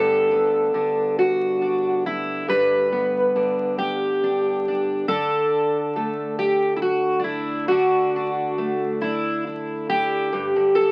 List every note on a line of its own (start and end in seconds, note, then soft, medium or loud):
0.00 2.43 G2 medium
0.00 0.73 D3 soft
0.00 0.31 B3 soft
0.00 1.61 D4 soft
0.00 1.18 A4 medium
0.31 2.43 B3 soft
0.74 3.35 D3 medium
1.19 2.05 F#4 medium
1.62 4.23 D4 soft
2.06 2.49 E4 medium
2.48 5.04 G2 medium
2.48 3.78 B4 loud
2.92 5.05 B3 soft
3.36 5.08 D3 medium
3.78 5.08 G4 medium
4.24 4.68 D4 soft
4.68 6.79 D4 soft
5.08 7.70 D3 medium
5.08 6.38 A4 loud
5.96 8.58 A3 medium
6.39 6.76 G4 medium
6.76 6.82 E4 medium
6.82 7.24 F#4 medium
7.20 8.14 D4 medium
7.24 7.68 E4 medium
7.68 10.55 D3 medium
7.68 9.00 F#4 medium
8.16 9.02 D4 soft
8.58 10.27 A3 medium
9.02 10.28 D4 soft
9.02 9.46 E4 medium
9.47 9.89 E4 soft
9.90 10.33 E4 soft
9.90 10.76 G4 medium
10.33 10.92 G2 medium
10.56 10.92 D3 medium
10.75 10.92 A4 medium